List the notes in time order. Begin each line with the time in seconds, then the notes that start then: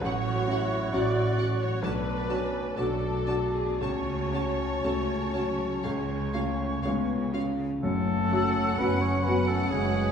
0.02 A1 A2 F#3 F#4 C#5 F#5 C#6
0.47 C#4 E4 F#4 F#5
0.92 A1 A2 F#3 C#4 F#4 D5 F#5
1.37 C#4 F#4 F#5
1.60 C#5
1.83 B1 B2 A3 D4 F#4 B4 A5 D6
2.29 C#4 D4 F#4 A5
2.76 B1 B2 A3 D4 F#4 A4 A5 D6
3.27 D4 F#4 A5
3.54 G#4
3.81 C#2 C#3 A3 C#4 F#4 C#5 A5 C#6
4.32 C#4 F#4 A5
4.84 C#2 C#3 A3 C#4 F#4 A5
5.34 F#3 C#4 F#4 A5
5.83 C#2 C#3 G#3 F4 F5 G#5 C#6
6.32 A3 C#4 F4 F5
6.82 C#2 C#3 G#3 B3 C#4 F5
6.86 F4
7.32 C#4 F4 F5
7.81 F#1 F#2 A3 C#4 A4 F#5
8.28 C#4 F#4 F#5
8.33 F#3 F#4
8.77 F#1 F#2 B3 C#4 F#4 B4
9.01 C#4 C#5
9.23 B3 C#4 F#4 B4 F#5
9.28 F#3 F#4
9.48 A3 A4
9.69 F#1 F#2 G#3 G#4 B4
9.73 C#3